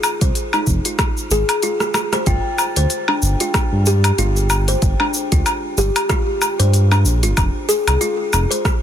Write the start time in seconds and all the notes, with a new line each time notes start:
Already playing: F4
0.03 cabasa, low woodblock
0.21 C2 C5, kick, open hi-hat, cabasa
0.35 open hi-hat, cabasa
0.53 D#4, cabasa, low woodblock
0.67 F1, kick, cabasa
0.85 F4, open hi-hat, cabasa
0.99 kick, cross-stick, open hi-hat, cabasa, low woodblock
1.17 cabasa
1.31 G#1 G#4, cabasa
1.49 open hi-hat, cabasa, low woodblock
1.63 F4, open hi-hat, cabasa
1.80 cross-stick, cabasa
1.94 cross-stick, cabasa, low woodblock
2.13 C5, cross-stick, open hi-hat, cabasa
2.26 G1 F4 G5, kick, open hi-hat, cabasa
2.58 cabasa, low woodblock
2.76 D2 C5, open hi-hat, cabasa
2.90 open hi-hat, cabasa
3.08 D4, low woodblock
3.22 G1, cabasa
3.40 F4, open hi-hat, cabasa
3.54 kick, cross-stick, open hi-hat, cabasa, low woodblock
3.72 G2
3.86 G4, cabasa
4.04 open hi-hat, cabasa, low woodblock
4.18 G1 F4, open hi-hat, cabasa
4.36 cabasa
4.50 cabasa, low woodblock
4.68 C5, open hi-hat, cabasa
4.82 G1, kick, open hi-hat, cabasa
5.00 D4, low woodblock
5.14 cabasa
5.32 D2 F4, kick, open hi-hat, cabasa
5.46 open hi-hat, cabasa, low woodblock
5.77 G1 G4, cabasa
5.96 open hi-hat, cabasa, low woodblock
6.09 F4, kick, cross-stick, open hi-hat, cabasa
6.42 cabasa, low woodblock
6.59 G2 C5, open hi-hat, cabasa
6.74 open hi-hat, cabasa
6.91 D4, cabasa, low woodblock
7.05 A#1, cabasa
7.23 G1 F4, open hi-hat, cabasa
7.37 F1, kick, open hi-hat, cabasa, low woodblock
7.69 G#4, cabasa
7.87 C2, open hi-hat, cabasa, low woodblock
8.01 F4, open hi-hat, cabasa
8.33 F1, cabasa, low woodblock
8.51 C5, open hi-hat, cabasa
8.65 kick, cross-stick, open hi-hat, cabasa